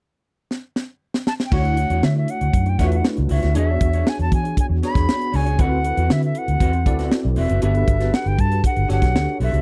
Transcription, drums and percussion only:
0.51 snare soft
0.76 snare medium
1.14 snare medium
1.27 snare medium
1.40 snare medium
1.52 kick loud
1.52 crash medium
1.65 closed hi-hat soft
1.77 closed hi-hat medium
1.90 closed hi-hat soft
2.03 snare loud
2.28 closed hi-hat medium
2.41 closed hi-hat soft
2.53 kick medium
2.53 closed hi-hat medium
2.66 closed hi-hat soft
2.79 kick medium
2.79 snare soft
2.79 closed hi-hat medium
2.92 closed hi-hat medium
3.05 snare loud
3.17 closed hi-hat soft
3.29 open hi-hat medium
3.43 snare soft
3.43 closed hi-hat medium
3.55 closed hi-hat medium
3.81 kick medium
3.81 closed hi-hat medium
3.93 closed hi-hat soft
4.07 snare loud
4.19 closed hi-hat soft
4.32 kick medium
4.32 closed hi-hat medium
4.45 closed hi-hat soft
4.57 kick medium
4.57 closed hi-hat medium
4.83 snare soft
4.83 closed hi-hat medium
4.95 kick loud
4.95 snare soft
4.95 closed hi-hat soft
5.09 snare loud
5.21 closed hi-hat soft
5.33 open hi-hat medium
5.46 closed hi-hat medium
5.59 kick loud
5.59 closed hi-hat medium
5.84 closed hi-hat medium
5.97 closed hi-hat soft
6.10 snare loud
6.23 closed hi-hat soft
6.35 closed hi-hat medium
6.48 closed hi-hat soft
6.60 kick medium
6.60 closed hi-hat medium
6.73 closed hi-hat soft
6.86 kick medium
6.86 closed hi-hat medium
6.99 snare soft
6.99 closed hi-hat soft
7.12 snare loud
7.36 open hi-hat medium
7.49 closed hi-hat medium
7.62 closed hi-hat medium
7.75 closed hi-hat soft
7.88 kick medium
7.88 closed hi-hat medium
8.01 snare soft
8.01 closed hi-hat soft
8.14 snare loud
8.26 closed hi-hat soft
8.39 kick medium
8.39 closed hi-hat medium
8.52 closed hi-hat soft
8.64 kick medium
8.64 closed hi-hat medium
8.76 closed hi-hat soft
8.90 snare soft
8.90 closed hi-hat medium
9.02 kick medium
9.02 snare soft
9.02 closed hi-hat soft
9.16 snare loud
9.41 open hi-hat medium
9.54 closed hi-hat medium

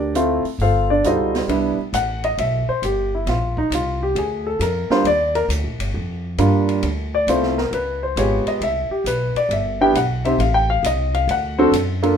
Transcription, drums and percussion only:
0.15 closed hi-hat medium
0.45 open hi-hat soft
0.60 open hi-hat soft
1.04 closed hi-hat soft
1.35 snare soft
1.35 open hi-hat soft
1.49 ride soft
1.94 hi-hat pedal medium
1.94 ride medium
2.24 ride soft
2.38 ride medium
2.83 hi-hat pedal medium
2.83 ride medium
3.27 snare soft
3.27 ride medium
3.57 kick soft
3.72 hi-hat pedal medium
3.72 ride medium
4.16 ride medium
4.61 hi-hat pedal medium
4.61 ride medium
4.90 snare medium
5.05 ride medium
5.35 ride soft
5.50 hi-hat pedal medium
5.50 ride medium
5.80 ride medium
6.38 hi-hat pedal soft
6.38 ride medium
6.69 ride soft
6.83 ride medium
7.28 hi-hat pedal medium
7.28 ride medium
7.43 snare soft
7.58 snare soft
7.73 ride medium
8.17 hi-hat pedal soft
8.17 ride medium
8.47 ride soft
8.61 ride medium
9.06 hi-hat pedal medium
9.06 ride medium
9.36 ride soft
9.51 ride medium
9.95 hi-hat pedal soft
9.95 ride medium
10.25 ride soft
10.40 ride medium
10.84 hi-hat pedal medium
10.84 ride medium
11.14 ride soft
11.29 ride medium
11.73 hi-hat pedal soft
11.73 ride medium
12.03 ride soft

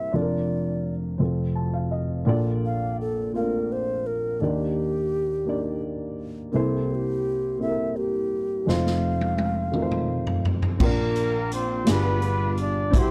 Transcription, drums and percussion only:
8.69 snare soft
8.86 snare soft
9.21 high tom soft
9.38 high tom medium
9.73 mid tom medium
9.91 mid tom medium
10.27 floor tom medium
10.45 floor tom medium
10.62 floor tom medium
10.80 kick loud
10.80 crash medium
11.16 closed hi-hat soft
11.52 closed hi-hat soft
11.87 snare loud
11.87 closed hi-hat medium
12.22 closed hi-hat soft
12.57 closed hi-hat soft
12.93 kick loud
12.93 closed hi-hat medium

